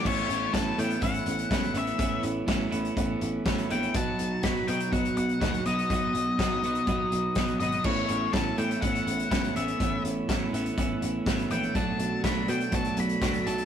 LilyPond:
<<
  \new Staff \with { instrumentName = "Lead electric guitar" } { \time 4/4 \key a \mixolydian \tempo 4 = 123 cis''4 a''8 g''8 fis''4. e''8~ | e''8 r2. g''8 | a''4 b''8 g''8 fis''8 fis''4 dis''8~ | dis''2.~ dis''8 dis''8 |
cis''4 a''8 g''8 fis''4. e''8~ | e''8 r2. g''8 | a''4 b''8 g''8 a''8 b''4 a''8 | }
  \new Staff \with { instrumentName = "Clean electric guitar" } { \time 4/4 \key a \mixolydian <a, e b cis' e'>4 <a, e b cis' e'>8 <a, e b cis' e'>8 <a, e b cis' e'>4 <a, e b cis' e'>8 <a, e b cis' e'>8 | <a, e b cis' e'>4 <a, e b cis' e'>8 <a, e b cis' e'>8 <a, e b cis' e'>4 <a, e b cis' e'>8 <a, e b cis' e'>8 | <b, fis b dis' fis'>4 <b, fis b dis' fis'>8 <b, fis b dis' fis'>8 <b, fis b dis' fis'>4 <b, fis b dis' fis'>8 <b, fis b dis' fis'>8 | <b, fis b dis' fis'>4 <b, fis b dis' fis'>8 <b, fis b dis' fis'>8 <b, fis b dis' fis'>4 <b, fis b dis' fis'>8 <b, fis b dis' fis'>8 |
<a, e b cis' e'>4 <a, e b cis' e'>8 <a, e b cis' e'>8 <a, e b cis' e'>4 <a, e b cis' e'>8 <a, e b cis' e'>8 | <a, e b cis' e'>4 <a, e b cis' e'>8 <a, e b cis' e'>8 <a, e b cis' e'>4 <a, e b cis' e'>8 <a, e b cis' e'>8 | <b, fis a d' fis'>4 <b, fis a d' fis'>8 <b, fis a d' fis'>8 <b, fis a d' fis'>4 <b, fis a d' fis'>8 <b, fis a d' fis'>8 | }
  \new Staff \with { instrumentName = "Picked electric bass" } { \clef bass \time 4/4 \key a \mixolydian a,,8 a,,8 a,,8 a,8 a,,8 a,,8 cis,8 a,,8 | a,,8 a,,8 a,,8 a,,8 a,,8 a,,8 a,,8 bes,,8 | b,,8 b,,8 b,,8 b,8 b,,8 b,,8 dis,8 b,,8 | b,,8 b,,8 b,,8 b,,8 b,,8 b,,8 b,,8 gis,,8 |
a,,8 a,,8 a,,8 a,8 a,,8 a,,8 cis,8 a,,8 | a,,8 a,,8 a,,8 a,,8 a,,8 a,,8 a,,8 bes,,8 | b,,8 b,,8 b,,8 b,8 b,,8 b,,8 d,8 b,,8 | }
  \new DrumStaff \with { instrumentName = "Drums" } \drummode { \time 4/4 <cymc bd>8 hh8 <hh bd sn>8 hh16 hh16 <hh bd>16 hh16 hh16 hh16 <hh bd sn>16 hh16 hh16 hh16 | <hh bd>8 hh8 <hh bd sn>8 hh16 hh16 <hh bd>8 hh8 <hh bd sn>16 hh16 hh16 hh16 | <hh bd>8 hh8 <hh bd sn>8 hh16 hh16 <hh bd>16 hh16 hh16 hh16 <hh bd sn>16 hh16 hh16 hh16 | <hh bd>8 hh8 <hh bd sn>8 hh16 hh16 <hh bd>8 hh8 <hh bd sn>16 hh16 hh16 hh16 |
<cymc bd>8 hh8 <hh bd sn>8 hh16 hh16 <hh bd>16 hh16 hh16 hh16 <hh bd sn>16 hh16 hh16 hh16 | <hh bd>8 hh8 <hh bd sn>8 hh16 hh16 <hh bd>8 hh8 <hh bd sn>16 hh16 hh16 hh16 | <hh bd>8 hh8 <hh bd sn>8 hh16 hh16 <hh bd>16 hh16 hh16 hh16 <hh bd sn>16 hh16 hh16 hh16 | }
>>